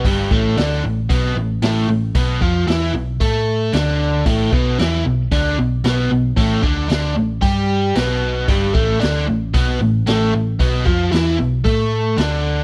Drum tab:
HH |o---o---o---o---|o---o---o---o---|o---o---o---o---|o---o---o---o---|
SD |----oo------o---|----o-------o-o-|----oo------o---|----o-------o---|
BD |o-o-----o-------|o-o-----o-------|o-o-----o-------|o-o-----o-------|

HH |o---o---o---o---|o---o---o---o---|
SD |----o-------o---|----oo------o---|
BD |o-o-----o-------|o-o-----o-------|